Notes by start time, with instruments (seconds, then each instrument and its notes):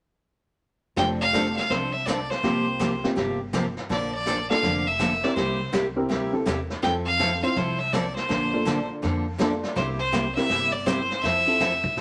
0.96 upright bass F1, steel-string acoustic guitar F3 C4 D4 A4, honky-tonk piano A3 D4 F4 G4, fiddle G5, brush sweep, kick, snare
1.21 fiddle F5
1.33 steel-string acoustic guitar F3 C4 D4 A4, honky-tonk piano A3 D4 F4 G4, kick, snare, hi-hat pedal
1.56 fiddle F5, snare
1.70 upright bass C2, steel-string acoustic guitar F3 C4 D4 A4, fiddle C5, brush sweep, kick, snare
1.92 fiddle E5
2.06 steel-string acoustic guitar F3 C4 D4 A4, fiddle D5, kick, snare, hi-hat pedal
2.30 fiddle C5, snare
2.43 upright bass C2, steel-string acoustic guitar C3 F3 A#3 F4 G4, honky-tonk piano A#3 C4 F4 G4, brush sweep, kick, snare
2.79 steel-string acoustic guitar C3 F3 A#3 F4 G4, kick, snare, hi-hat pedal
3.04 honky-tonk piano A#3 C4 F4 G4, snare
3.16 upright bass G1, steel-string acoustic guitar C3 F3 A#3 F4 G4, brush sweep, kick, snare
3.53 steel-string acoustic guitar C3 F3 A#3 F4 G4, kick, snare, hi-hat pedal
3.77 snare
3.89 upright bass A#1, steel-string acoustic guitar D3 F3 A#3 D4 A4, fiddle D5, brush sweep, kick, snare
4.14 fiddle D5
4.26 steel-string acoustic guitar D3 F3 A#3 D4 A4, kick, snare, hi-hat pedal
4.50 honky-tonk piano A#3 D4 F4 A4, fiddle F5, snare
4.62 upright bass F1, steel-string acoustic guitar D3 F3 A#3 D4 A4, brush sweep, kick, snare
4.87 fiddle E5
4.99 steel-string acoustic guitar D3 F3 A#3 D4 A4, kick, snare, hi-hat pedal
5.23 honky-tonk piano C4 E4 G4 A#4, fiddle D5, snare
5.35 upright bass C2, steel-string acoustic guitar C3 G3 A#3 E4 G4, fiddle C5, brush sweep, kick, snare
5.72 upright bass C2, steel-string acoustic guitar C3 G3 A#3 E4 G4, kick, snare, hi-hat pedal
5.96 honky-tonk piano C4 E4 G4 A#4
6.09 upright bass D2, steel-string acoustic guitar C3 G3 A#3 E4 G4, brush sweep, kick, snare
6.33 honky-tonk piano C4 E4 G4 A4
6.45 upright bass E2, steel-string acoustic guitar C3 G3 A#3 E4 G4, kick, snare, hi-hat pedal
6.70 snare
6.82 upright bass F2, steel-string acoustic guitar F3 C4 E4 A4, honky-tonk piano C4 F4 A4, fiddle G5, brush sweep, kick, snare
7.05 fiddle F5
7.19 steel-string acoustic guitar F3 C4 E4 A4, kick, snare, hi-hat pedal
7.43 honky-tonk piano C4 E4 F4 C5, fiddle F5
7.56 upright bass C2, steel-string acoustic guitar F3 C4 E4 A4, fiddle C5, brush sweep, kick, snare
7.79 fiddle E5
7.92 steel-string acoustic guitar F3 C4 E4 A4, fiddle D5, kick, snare, hi-hat pedal
8.16 fiddle C5, snare
8.29 upright bass A#1, steel-string acoustic guitar D3 F3 A#3 D4 A4, brush sweep, kick, snare
8.54 honky-tonk piano A#3 D4 F4 A4
8.65 steel-string acoustic guitar D3 F3 A#3 D4 A4, kick, snare, hi-hat pedal
9.02 upright bass F2, steel-string acoustic guitar D3 F3 A#3 D4 A4, brush sweep, kick, snare
9.38 steel-string acoustic guitar D3 F3 A#3 D4 A4, honky-tonk piano A#3 D4 F4 A4, kick, snare, hi-hat pedal
9.63 snare
9.75 upright bass C2, steel-string acoustic guitar C3 G3 A#3 E4 G4, fiddle C5, brush sweep, kick, snare
9.99 fiddle C5
10.12 steel-string acoustic guitar C3 G3 A#3 E4 G4, kick, snare, hi-hat pedal
10.35 honky-tonk piano C4 E4 G4 A#4, fiddle E5, snare
10.49 upright bass G1, steel-string acoustic guitar C3 G3 A#3 E4 G4, brush sweep, kick, snare
10.72 fiddle D5
10.86 steel-string acoustic guitar C3 G3 A#3 E4 G4, honky-tonk piano C4 E4 G4 A#4, fiddle C5, kick, snare, hi-hat pedal
11.10 snare
11.22 upright bass F2, steel-string acoustic guitar F3 C4 E4 A4, fiddle E5, brush sweep, kick, snare
11.47 honky-tonk piano C4 E4 F4 A4
11.60 steel-string acoustic guitar F3 C4 E4 A4, kick, snare, hi-hat pedal
11.84 kick
11.97 upright bass C2, steel-string acoustic guitar F3 C4 E4, brush sweep, kick, snare